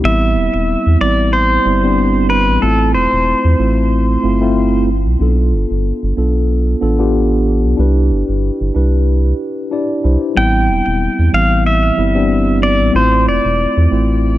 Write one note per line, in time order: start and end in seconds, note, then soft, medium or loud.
0.03 0.38 A1 medium
0.03 0.97 G3 medium
0.03 0.98 B3 medium
0.03 0.98 C4 medium
0.03 0.99 E4 medium
0.03 1.01 E5 loud
0.36 0.49 E1 medium
0.54 0.76 E1 medium
0.87 0.97 E2 medium
1.01 1.59 A1 medium
1.01 1.63 G3 medium
1.01 1.63 B3 medium
1.01 1.63 C4 medium
1.01 1.63 E4 medium
1.01 1.35 D5 medium
1.33 2.29 C5 loud
1.65 2.50 G1 medium
1.65 1.79 G3 medium
1.65 1.79 B3 medium
1.65 1.79 C4 medium
1.65 1.80 E4 medium
1.83 1.93 G3 medium
1.83 1.93 B3 medium
1.83 1.93 C4 medium
1.83 1.94 D4 loud
2.30 2.63 B4 medium
2.48 2.58 A1 medium
2.61 2.96 A1 medium
2.61 3.55 A3 medium
2.61 3.56 C4 medium
2.61 3.56 E4 medium
2.61 3.57 F4 medium
2.61 2.92 A4 medium
2.94 3.07 E1 medium
2.94 4.84 C5 medium
3.13 3.34 E1 medium
3.45 3.55 E2 medium
3.59 4.17 A1 medium
3.59 4.21 A3 medium
3.59 4.21 C4 medium
3.59 4.21 E4 medium
3.59 4.21 F4 medium
4.23 5.08 G1 medium
4.23 4.37 A3 medium
4.23 4.37 C4 medium
4.23 4.38 E4 medium
4.23 4.38 F4 medium
4.41 4.51 A3 loud
4.41 4.51 C4 medium
4.41 4.51 E4 medium
4.41 4.52 F4 loud
5.06 5.16 B1 loud
5.19 5.54 B1 loud
5.19 6.13 B3 medium
5.19 6.14 D4 medium
5.19 6.14 F4 medium
5.19 6.15 A4 medium
5.53 5.65 G1 medium
5.71 5.92 G1 medium
6.03 6.13 G1 medium
6.17 6.75 B1 medium
6.17 6.79 B3 medium
6.17 6.79 D4 medium
6.17 6.79 F4 medium
6.17 6.80 A4 medium
6.81 7.66 A1 medium
6.81 6.95 B3 medium
6.81 6.95 D4 medium
6.81 6.96 F4 medium
6.81 6.96 A4 medium
6.99 7.09 B3 medium
6.99 7.09 D4 medium
6.99 7.09 F4 medium
6.99 7.10 G4 loud
7.64 7.75 B1 medium
7.77 8.12 C2 loud
7.77 8.71 D4 medium
7.77 8.72 E4 medium
7.77 8.72 G4 medium
7.77 8.73 B4 medium
8.11 8.23 G1 medium
8.29 8.50 G1 medium
8.61 8.71 G1 medium
8.74 9.33 C2 medium
8.74 9.37 D4 medium
8.74 9.37 E4 medium
8.74 9.37 G4 medium
8.74 9.37 B4 medium
9.71 10.00 D4 medium
9.71 10.01 E4 medium
9.71 10.01 G4 medium
9.71 10.01 D5 medium
10.04 10.17 C2 medium
10.04 10.16 D4 medium
10.04 10.16 E4 medium
10.04 10.16 G4 medium
10.04 10.17 C5 medium
10.35 10.70 A1 loud
10.35 11.29 G3 medium
10.35 11.30 B3 medium
10.35 11.30 C4 medium
10.35 11.31 E4 medium
10.35 11.34 G5 loud
10.69 10.82 E1 loud
10.87 11.09 E1 medium
11.19 11.29 E2 medium
11.33 11.91 A1 medium
11.33 11.96 E3 medium
11.33 11.95 G3 medium
11.33 11.95 B3 medium
11.33 11.95 C4 medium
11.33 11.66 F5 loud
11.66 12.59 E5 loud
11.97 12.82 G1 medium
11.97 12.11 G3 medium
11.97 12.12 B3 medium
11.97 12.12 C4 medium
11.97 12.12 E4 medium
12.15 12.25 G3 loud
12.15 12.25 B3 medium
12.15 12.25 C4 medium
12.15 12.26 D4 loud
12.63 12.93 D5 medium
12.80 12.91 A1 loud
12.93 13.29 A1 loud
12.93 13.87 A3 medium
12.93 13.88 C4 medium
12.93 13.88 E4 medium
12.93 13.89 F4 medium
12.93 13.28 C5 medium
13.27 13.40 E1 medium
13.27 14.38 D5 medium
13.45 13.67 E1 medium
13.77 13.87 E2 medium
13.91 14.38 A1 medium
13.91 14.38 A3 medium
13.91 14.38 C4 medium
13.91 14.38 E4 medium
13.91 14.38 F4 medium